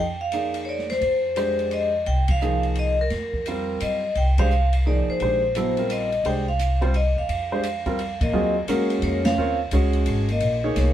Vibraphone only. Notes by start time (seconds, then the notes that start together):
0.00 G5
0.21 F5
0.65 C#5 D5
0.90 C5
1.73 D#5
2.07 G5
2.31 F5
2.79 D#5
3.01 A#4
3.82 D#5
4.17 G5
4.39 F5
4.87 D5
5.10 C5
5.91 D#5
6.26 G5
6.48 F5
6.96 D#5
7.18 F5
8.22 D#5
8.68 C#5
9.03 C#5
9.25 F5
10.32 D#5
10.78 C#5